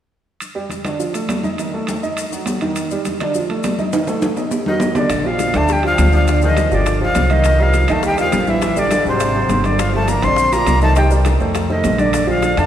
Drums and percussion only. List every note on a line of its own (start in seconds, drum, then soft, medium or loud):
0.40 high conga soft
0.40 high timbale medium
0.40 maracas medium
0.56 high conga soft
0.70 high conga medium
0.70 high timbale medium
0.70 low timbale soft
0.70 maracas medium
0.85 high conga medium
0.85 high timbale medium
0.85 maracas soft
1.00 high conga soft
1.00 maracas medium
1.14 high conga soft
1.14 high timbale medium
1.14 maracas medium
1.29 high conga medium
1.29 high timbale medium
1.29 low timbale medium
1.29 maracas medium
1.43 high conga medium
1.43 maracas soft
1.58 high conga soft
1.58 high timbale medium
1.58 maracas medium
1.74 high conga soft
1.87 high conga medium
1.87 high timbale medium
1.87 low timbale medium
1.87 maracas medium
2.03 maracas soft
2.17 high conga soft
2.17 high timbale medium
2.17 maracas medium
2.32 high conga soft
2.32 maracas medium
2.46 high conga medium
2.46 high timbale medium
2.46 low timbale medium
2.46 maracas medium
2.61 high conga medium
2.61 high timbale medium
2.61 maracas soft
2.76 high conga soft
2.76 high timbale medium
2.76 maracas medium
2.91 high conga soft
2.91 maracas medium
3.05 high conga medium
3.05 high timbale medium
3.05 low timbale medium
3.05 maracas medium
3.20 high conga medium
3.20 high timbale medium
3.20 maracas soft
3.34 high conga soft
3.34 maracas medium
3.50 high conga soft
3.50 high timbale medium
3.63 high conga medium
3.63 high timbale medium
3.63 low timbale medium
3.63 maracas medium
3.79 high conga medium
3.79 maracas soft
3.93 high conga soft
3.93 high timbale medium
3.93 maracas medium
4.07 high conga soft
4.07 high timbale medium
4.07 maracas medium
4.22 high conga medium
4.22 high timbale medium
4.22 maracas medium
4.37 low timbale medium
4.37 maracas soft
4.51 high conga soft
4.51 low timbale medium
4.51 maracas medium
4.66 high conga loud
4.80 high conga medium
4.80 low timbale loud
4.80 maracas medium
4.95 low conga medium
4.95 low timbale medium
4.95 maracas soft
5.09 high bongo medium
5.09 high conga soft
5.09 high timbale medium
5.09 maracas medium
5.25 high bongo soft
5.25 high conga soft
5.39 high bongo soft
5.39 high conga medium
5.39 high timbale medium
5.39 low timbale medium
5.39 maracas medium
5.54 high bongo soft
5.54 high conga medium
5.54 high timbale medium
5.54 maracas soft
5.68 high bongo medium
5.68 high conga soft
5.68 maracas medium
5.83 high bongo soft
5.83 high conga soft
5.83 high timbale medium
5.98 high bongo soft
5.98 low bongo medium
5.98 high conga medium
5.98 high timbale medium
5.98 low timbale medium
5.98 maracas medium
6.12 high conga medium
6.12 maracas soft
6.27 high bongo medium
6.27 high conga soft
6.27 high timbale medium
6.27 maracas medium
6.42 high bongo soft
6.42 high conga soft
6.42 maracas medium
6.57 high bongo medium
6.57 high conga medium
6.57 high timbale medium
6.57 low timbale medium
6.57 maracas medium
6.71 high bongo soft
6.71 maracas soft
6.86 high bongo medium
6.86 high conga soft
6.86 high timbale medium
6.86 maracas medium
7.01 high bongo soft
7.01 high conga soft
7.15 high bongo soft
7.15 low bongo medium
7.15 high conga medium
7.15 high timbale medium
7.15 low timbale medium
7.15 maracas medium
7.30 high conga medium
7.30 high timbale medium
7.30 maracas soft
7.44 high bongo medium
7.44 high conga soft
7.44 high timbale medium
7.44 maracas medium
7.59 high bongo soft
7.59 high conga soft
7.73 high bongo soft
7.73 high conga medium
7.73 high timbale medium
7.73 low timbale medium
7.73 maracas medium
7.88 high bongo soft
7.88 high conga medium
7.88 high timbale medium
7.88 maracas soft
8.03 high bongo medium
8.03 high conga soft
8.03 maracas medium
8.18 high bongo soft
8.18 high conga soft
8.18 high timbale medium
8.18 maracas medium
8.32 high bongo soft
8.32 low bongo medium
8.32 high conga medium
8.32 high timbale medium
8.32 low timbale medium
8.32 maracas medium
8.47 high conga medium
8.47 maracas soft
8.61 high bongo medium
8.61 high conga soft
8.61 high timbale medium
8.61 maracas medium
8.76 high bongo soft
8.76 high conga soft
8.76 maracas medium
8.91 high bongo soft
8.91 high conga loud
8.91 high timbale medium
8.91 low timbale medium
8.91 maracas medium
9.06 high bongo soft
9.06 maracas soft
9.20 high bongo medium
9.20 high conga soft
9.20 high timbale medium
9.20 maracas medium
9.35 high bongo soft
9.35 high conga soft
9.49 high bongo soft
9.49 low bongo medium
9.49 high conga medium
9.49 high timbale medium
9.49 low timbale medium
9.49 maracas medium
9.64 high conga medium
9.64 high timbale medium
9.64 maracas soft
9.79 high bongo medium
9.79 high conga soft
9.79 high timbale medium
9.79 maracas medium
9.94 high bongo soft
9.94 high conga soft
10.08 high bongo medium
10.08 high conga medium
10.08 high timbale medium
10.08 low timbale medium
10.08 maracas medium
10.22 high bongo soft
10.22 high conga medium
10.22 high timbale medium
10.22 maracas soft
10.36 high bongo medium
10.36 high conga soft
10.36 maracas medium
10.52 high bongo soft
10.52 high conga soft
10.52 high timbale medium
10.52 maracas medium
10.67 high bongo soft
10.67 low bongo medium
10.67 high conga medium
10.67 high timbale medium
10.67 low timbale medium
10.67 maracas medium
10.81 high conga medium
10.81 maracas soft
10.95 high bongo medium
10.95 high conga soft
10.95 high timbale medium
10.95 maracas medium
11.11 high bongo soft
11.11 high conga soft
11.11 maracas medium
11.25 high bongo soft
11.25 high conga medium
11.25 high timbale medium
11.25 low timbale medium
11.25 maracas medium
11.40 high bongo soft
11.40 maracas soft
11.55 high bongo medium
11.55 high conga soft
11.55 high timbale medium
11.55 maracas medium
11.70 high bongo soft
11.70 high conga soft
11.84 high bongo soft
11.84 low bongo medium
11.84 high conga medium
11.84 high timbale medium
11.84 low timbale medium
11.84 maracas medium
11.98 high conga medium
11.98 high timbale medium
11.98 maracas soft
12.13 high bongo medium
12.13 high conga soft
12.13 high timbale medium
12.13 maracas medium
12.28 high bongo soft
12.28 high conga soft
12.42 high bongo medium
12.42 high conga medium
12.42 high timbale medium
12.42 low timbale medium
12.42 maracas medium
12.57 high bongo soft
12.57 high conga medium
12.57 high timbale medium
12.57 maracas soft